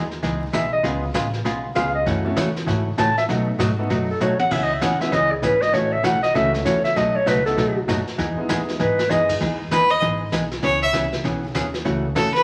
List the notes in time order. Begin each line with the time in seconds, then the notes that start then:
Already playing: D#2
0.11 snare
0.23 C#2 E3 G#3 B3 D#4 G#4, brush sweep, snare
0.53 B1 E3 G#3 B3 D#4 G#4 E5, snare, hi-hat pedal
0.73 D#5
0.83 C#2 C#3 G#3 B3 C#4 F4 G#4, brush sweep, snare
1.14 A1 C#3 G#3 B3 F4 G#4, snare, hi-hat pedal
1.33 snare
1.45 B1 C#3 G#3 B3 F4 G#4, brush sweep, snare
1.75 C#2 C#3 G#3 B3 C#4 F4 G#4 F5, snare, hi-hat pedal
1.95 D#5
2.06 F#2 C#3 E3 A3 C#4 F#4, brush sweep, snare
2.25 A3 C#4 E4 F#4 A4
2.36 E2 C#3 E3 A3 C#4 F#4, snare, hi-hat pedal
2.56 snare
2.66 G#2 C#3 E3 A3 C#4 F#4, brush sweep, snare
2.98 A2 C#3 E3 A3 C#4 F#4 A5, snare, hi-hat pedal
3.17 E5, snare
3.29 B2 F#3 A3 B3 D#4 F#4 A4, brush sweep, snare
3.59 G#2 B2 F#3 A3 D#4 F#4, snare, hi-hat pedal
3.78 A3 B3 D#4 F#4 A4
3.90 F#2 B2 F#3 A3 D#4 F#4, brush sweep, snare
4.10 A4
4.20 D#2 B2 F#3 A3 D#4 F#4 C#5, hi-hat pedal
4.39 F#5, muted upright bass stroke, high tom
4.51 C#2 C#3 E3 B3 C#4 G#4 E5, brush sweep, kick, snare, crash
4.63 D#5
4.73 E5
4.81 E2 C#3 E3 B3 C#4 G#4 F#5, snare, hi-hat pedal
5.00 G#3 B3 C#4 E4 G#4 E5, snare
5.12 C#2 C#3 E3 B3 C#4 G#4 D#5, brush sweep, snare
5.31 G#4
5.42 G#1 C#3 E3 B3 C#4 G#4 B4, snare, hi-hat pedal
5.62 D#5, snare
5.73 A1 C#3 E3 A3 C#4 F#4 C#5, brush sweep, snare
5.92 E5
6.03 B1 C#3 E3 A3 C#4 F#4 F#5, snare, hi-hat pedal
6.23 D#5, snare
6.34 C#2 C#3 E3 A3 C#4 E4 F#4 A4 E5, brush sweep, snare
6.54 A4, snare
6.65 E2 C#3 E3 A3 C#4 F#4 C#5, snare, hi-hat pedal
6.84 E5, snare
6.96 B1 B2 F#3 A3 D#4 F#4 D#5, brush sweep, snare
7.16 C#5
7.26 C#2 B2 F#3 A3 D#4 F#4 B4, snare, hi-hat pedal
7.45 A3 B3 D#4 F#4 A4, snare
7.57 D#2 B2 F#3 A3 D#4 F#4, brush sweep, snare
7.88 F#2 B2 F#3 A3 D#4 F#4, snare, hi-hat pedal
8.07 muted upright bass stroke, snare
8.18 E2 E3 G#3 B3 D#4 G#4, brush sweep, snare
8.37 G#3 B3 D#4 E4 G#4, muted upright bass stroke
8.49 D#2 E3 G#3 B3 D#4 G#4, snare, hi-hat pedal
8.69 snare
8.79 G#2 E3 G#3 B3 D#4 G#4 B4, snare
8.99 snare
9.09 F#2 E3 G#3 B3 D#4 E4 G#4 D#5, snare, hi-hat pedal
9.29 kick, crash
9.40 E2 E3 G#3 B3 D#4 G#4, brush sweep, snare
9.71 D#2 E3 G#3 B3 D#4 G#4 B4, snare, hi-hat pedal
9.91 D#5
10.01 G#1 E3 G#3 B3 D#4 G#4, brush sweep, snare
10.32 B1 E3 G#3 B3 D#4 G#4, snare, hi-hat pedal
10.51 snare
10.62 C#2 C#3 E3 B3 C#4 G#4 C#5, brush sweep, snare
10.83 E5
10.93 C2 C#3 E3 B3 C#4 G#4, snare, hi-hat pedal
11.13 snare
11.24 B1 C#3 E3 B3 C#4 G#4, brush sweep, snare
11.55 D#2 C#3 E3 B3 C#4 G#4, snare, hi-hat pedal
11.74 snare
11.85 C#2 C#3 E3 A3 C#4 F#4, brush sweep, snare
12.15 E2 C#3 E3 A3 C#4 F#4 A4, snare, hi-hat pedal
12.34 B4, snare